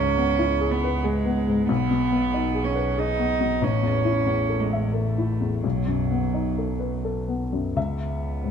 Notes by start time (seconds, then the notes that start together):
Already playing: C#2 G#2 C#4
0.17 B3
0.39 E4
0.61 G#4
0.71 B3
0.84 B4
1.04 G#3 G#4
1.25 B3
1.48 G#2
1.68 B1 B3
1.91 B2
2.12 B3
2.33 D#4
2.54 G#4
2.64 C#4
2.75 B4
2.98 D#4 G#4
3.19 B3
3.40 B2
3.62 A1 C#4
3.83 E2
4.05 E4
4.26 E2
4.50 A4
4.60 G#3
4.73 E5
4.94 A3 A4
5.18 E4
5.41 E2
5.63 B1 F#3
5.87 F#2
6.11 B3
6.34 D#4
6.58 A4
6.80 B4
7.05 A4
7.28 B3
7.53 F#2
7.75 C#2 B3 E5
8.44 G#2